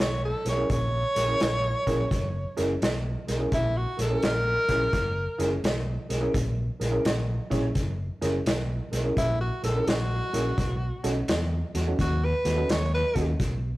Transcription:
0.00 fingered electric bass B1, tenor saxophone C#5, snare
0.25 tenor saxophone A4
0.45 fingered electric bass B1, honky-tonk piano G#4 A#4, snare, closed hi-hat
0.49 tenor saxophone C#5
0.57 honky-tonk piano C#4 E4 G#4 A#4
0.70 fingered electric bass A#1, tenor saxophone C#5, kick, snare, closed hi-hat
1.15 fingered electric bass A#1, honky-tonk piano G#4 A#4, snare, closed hi-hat
1.28 honky-tonk piano C#4 E4 G#4 A#4
1.40 fingered electric bass A#1, snare, closed hi-hat
1.86 fingered electric bass A#1, honky-tonk piano C#4 E4 G#4 A#4, kick, snare, closed hi-hat
2.11 fingered electric bass F#1, kick, snare, closed hi-hat
2.57 fingered electric bass F#1, honky-tonk piano C#4 E4 G#4 A#4, snare, closed hi-hat
2.82 fingered electric bass B1, snare, closed hi-hat
3.27 fingered electric bass B1, honky-tonk piano G#4 A#4, snare, closed hi-hat
3.39 honky-tonk piano C#4 E4 G#4 A#4
3.52 fingered electric bass A#1, tenor saxophone E4, kick, snare, closed hi-hat
3.77 tenor saxophone F#4
3.97 fingered electric bass A#1, honky-tonk piano G#4 A#4, snare, closed hi-hat
4.02 tenor saxophone A4
4.09 honky-tonk piano C#4 E4 G#4 A#4
4.22 fingered electric bass A#1, tenor saxophone A#4, snare, closed hi-hat
4.68 fingered electric bass A#1, honky-tonk piano C#4 E4 G#4 A#4, kick, snare, closed hi-hat
4.93 fingered electric bass F#1, kick, snare, closed hi-hat
5.38 fingered electric bass F#1, honky-tonk piano C#4 E4 G#4 A#4, snare, closed hi-hat
5.64 fingered electric bass B1, snare, closed hi-hat
6.09 fingered electric bass B1, honky-tonk piano G#4 A#4, snare, closed hi-hat
6.20 honky-tonk piano C#4 E4 G#4 A#4
6.34 fingered electric bass A#1, kick, snare, closed hi-hat
6.80 fingered electric bass A#1, honky-tonk piano G#4 A#4, snare, closed hi-hat
6.91 honky-tonk piano C#4 E4 G#4 A#4
7.05 fingered electric bass A#1, snare, closed hi-hat
7.50 fingered electric bass A#1, honky-tonk piano C#4 E4 G#4 C#5, kick, snare, closed hi-hat
7.75 fingered electric bass F#1, kick, snare, closed hi-hat
8.21 fingered electric bass F#1, honky-tonk piano C#4 E4 G#4 A#4, snare, closed hi-hat
8.46 fingered electric bass B1, snare, closed hi-hat
8.91 fingered electric bass B1, honky-tonk piano G#4 A#4, snare, closed hi-hat
9.03 honky-tonk piano C#4 E4 G#4 A#4
9.17 fingered electric bass A#1, tenor saxophone E4, kick, snare, closed hi-hat
9.41 tenor saxophone F#4
9.62 fingered electric bass A#1, honky-tonk piano G#4 A#4, tenor saxophone A4, snare, closed hi-hat
9.75 honky-tonk piano C#4 E4 G#4 A#4
9.87 fingered electric bass A#1, tenor saxophone F#4, snare, closed hi-hat
10.33 fingered electric bass A#1, honky-tonk piano C#4 E4 G#4 A#4, snare, closed hi-hat
10.58 fingered electric bass B1, kick, snare, closed hi-hat
11.04 fingered electric bass B1, honky-tonk piano C#4 D#4 F#4 A4, snare, closed hi-hat
11.28 fingered electric bass E2, snare, closed hi-hat
11.75 fingered electric bass E2, honky-tonk piano F#4 A4, snare, closed hi-hat
11.87 honky-tonk piano C#4 D#4 F#4 A4
11.99 fingered electric bass D#2, tenor saxophone F#4, kick, snare, closed hi-hat
12.25 tenor saxophone B4
12.45 fingered electric bass D#2, honky-tonk piano F#4 A4, snare, closed hi-hat
12.56 honky-tonk piano C#4 D#4 F#4 A4
12.69 fingered electric bass D#2, tenor saxophone C#5, snare, closed hi-hat
12.95 tenor saxophone B4
13.15 fingered electric bass D#2, honky-tonk piano C#4 D#4 F#4 A4, kick, snare, closed hi-hat
13.40 fingered electric bass B1, kick, snare, closed hi-hat

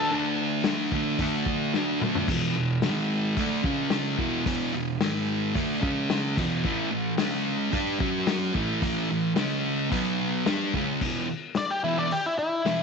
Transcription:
Already playing: distorted electric guitar A3 D4, lead electric guitar A4
0.11 distorted electric guitar D3 A3 D4
0.64 distorted electric guitar D3 A3 D4, snare, open hi-hat
0.92 distorted electric guitar D3 A3 D4, kick
1.19 distorted electric guitar D3 A3 D4, kick, open hi-hat
1.46 kick
1.74 distorted electric guitar D3 A3 D4, snare
2.01 distorted electric guitar D3 A3 D4, mid tom
2.15 floor tom
2.28 distorted electric guitar E2 B2 E3, kick, crash
2.57 distorted electric guitar E2 B2
2.82 distorted electric guitar G#2 D#3 G#3, snare, open hi-hat
3.37 distorted electric guitar D3 A3 D4, kick, open hi-hat
3.64 distorted electric guitar C#3 G#3 C#4, kick
3.90 snare, open hi-hat
4.17 distorted electric guitar E2 B2 E3, kick
4.45 distorted electric guitar E2 B2 E3, kick, open hi-hat
4.73 distorted electric guitar E2 B2
5.00 distorted electric guitar G#2 D#3 G#3, snare, open hi-hat
5.55 distorted electric guitar D3 A3 D4, kick, open hi-hat
5.81 distorted electric guitar C#3 G#3 C#4, kick
6.10 snare, open hi-hat
6.37 distorted electric guitar E2 B2 E3, kick, crash
6.64 distorted electric guitar A2 E3 A3, kick
6.91 distorted electric guitar A2 E3
7.18 distorted electric guitar C#3 G#3 C#4, snare, open hi-hat
7.72 distorted electric guitar G3 D4 G4, kick, open hi-hat
7.99 distorted electric guitar F#3 C#4 F#4, kick
8.27 snare, open hi-hat
8.54 distorted electric guitar A2 E3 A3, kick
8.82 distorted electric guitar A2 E3 A3, kick, open hi-hat
9.10 distorted electric guitar A2 E3
9.36 distorted electric guitar C#3 G#3 C#4, snare, open hi-hat
9.91 distorted electric guitar B2 F#3 B3, kick, open hi-hat
10.46 distorted electric guitar G3 D4 G4, snare, open hi-hat
10.74 distorted electric guitar C#3 G#3 C#4, kick
11.01 distorted electric guitar E2 B2 E3, kick, crash
11.55 lead electric guitar D5, snare, open hi-hat
11.70 lead electric guitar G4
11.84 distorted electric guitar E2 B2 E3, lead electric guitar E4
11.99 lead electric guitar D5
12.11 lead electric guitar G4, open hi-hat
12.26 lead electric guitar E4
12.39 lead electric guitar E4
12.65 distorted electric guitar E2 B2 E3, snare, open hi-hat

